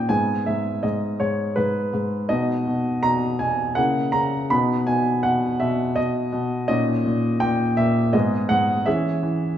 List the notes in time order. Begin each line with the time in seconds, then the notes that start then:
Already playing: A#2 C#4 D#4 D#5
0.09 G#2 B3 D#4 G#5
0.46 G#2 E5
0.83 G#2 D#5
1.20 G#2 C#5
1.56 G#2 B4
1.93 G#2
2.29 B2 B3 D#4 D#5
2.67 B2
3.03 B2 A#5
3.39 B2 G#5
3.75 C#3 A#3 E4 F#5
4.12 C#3 A#5
4.50 B2 B3 D#4 B5
4.87 B2 G#5
5.23 B2 F#5
5.60 B2 E5
5.96 B2 D#5
6.32 B2
6.68 A#2 C#4 D#4 D#5
7.05 A#2
7.40 A#2 G5
7.77 A#2 E5
8.13 G#2 B3 G#4 D#5
8.49 G#2 F#5
8.86 E3 C#4 G#4 E5
9.23 E3